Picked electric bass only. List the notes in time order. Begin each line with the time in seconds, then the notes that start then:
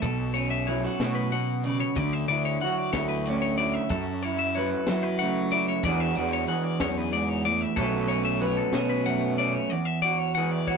0.03 B1
1.00 B2
1.96 D2
2.28 D2
2.93 D2
3.90 F#2
4.88 F#3
5.83 E2
6.17 E2
6.80 E2
7.77 B1
8.73 B2